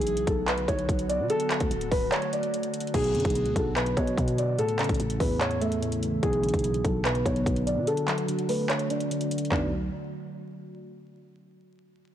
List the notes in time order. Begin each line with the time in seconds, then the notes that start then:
Already playing: B1 D3 F#3 B3 F#4 G#4
0.01 closed hi-hat
0.07 closed hi-hat
0.17 closed hi-hat
0.27 B1 A4, kick, closed hi-hat
0.48 B4, clap, closed hi-hat
0.58 closed hi-hat
0.68 B1 C#5, kick, closed hi-hat
0.79 closed hi-hat
0.89 B1, kick, closed hi-hat
0.99 closed hi-hat
1.09 D5, closed hi-hat
1.20 B2
1.30 A3 A4, closed hi-hat
1.40 closed hi-hat
1.50 clap, closed hi-hat
1.60 D2, kick, closed hi-hat
1.71 D1, closed hi-hat
1.81 closed hi-hat
1.92 D1 B4, kick, open hi-hat
2.12 C#5, clap, closed hi-hat
2.22 closed hi-hat
2.33 D5, closed hi-hat
2.43 closed hi-hat
2.54 closed hi-hat
2.63 closed hi-hat
2.74 closed hi-hat
2.80 closed hi-hat
2.87 closed hi-hat
2.94 B1 B2 D3 F#3 B3 F#4 G#4, kick, closed hi-hat, crash
3.04 closed hi-hat
3.15 F#2 D3, closed hi-hat
3.20 closed hi-hat
3.25 B1, kick, closed hi-hat
3.30 closed hi-hat
3.35 B2, closed hi-hat
3.46 D2, closed hi-hat
3.56 B1 F#3 A4, kick, closed hi-hat
3.76 B2 B4, clap, closed hi-hat
3.86 closed hi-hat
3.97 B2 B3 C#5, kick, closed hi-hat
4.07 closed hi-hat
4.18 B2, kick, closed hi-hat
4.28 closed hi-hat
4.38 D5, closed hi-hat
4.58 A2 C#3 E3 A3 E4 A4, closed hi-hat
4.69 closed hi-hat
4.79 C#3, clap, closed hi-hat
4.84 closed hi-hat
4.89 A1, kick, closed hi-hat
4.95 closed hi-hat
5.00 A1 A2, closed hi-hat
5.10 closed hi-hat
5.20 E2 E3 B4, kick, open hi-hat
5.41 A2 C#5, clap, closed hi-hat
5.51 closed hi-hat
5.61 A3 E5, closed hi-hat
5.72 closed hi-hat
5.82 A2, closed hi-hat
5.92 closed hi-hat
6.03 closed hi-hat
6.23 B1 B2 D3 F#3 B3 F#4 G#4, kick, closed hi-hat
6.33 closed hi-hat
6.43 D3, closed hi-hat
6.49 closed hi-hat
6.54 B1, kick, closed hi-hat
6.59 closed hi-hat
6.64 B2, closed hi-hat
6.74 closed hi-hat
6.84 B1 F#3 A4, kick, closed hi-hat
7.05 B2 B4, clap, closed hi-hat
7.15 closed hi-hat
7.26 B1 B3 C#5, kick, closed hi-hat
7.36 closed hi-hat
7.46 B1 B2, kick, closed hi-hat
7.56 closed hi-hat
7.67 D5, closed hi-hat
7.77 B2
7.87 D3 A3 A4, closed hi-hat
7.97 closed hi-hat
8.08 F#3, clap, closed hi-hat
8.18 closed hi-hat
8.28 D3, closed hi-hat
8.39 closed hi-hat
8.49 A3 B4, open hi-hat
8.69 D3 C#5, clap, closed hi-hat
8.79 closed hi-hat
8.90 D4 D5, closed hi-hat
9.00 closed hi-hat
9.11 D3, closed hi-hat
9.21 closed hi-hat
9.31 closed hi-hat
9.38 closed hi-hat
9.45 closed hi-hat
9.52 B1 D3 F#3 B3 D4 D5, kick, clap, floor tom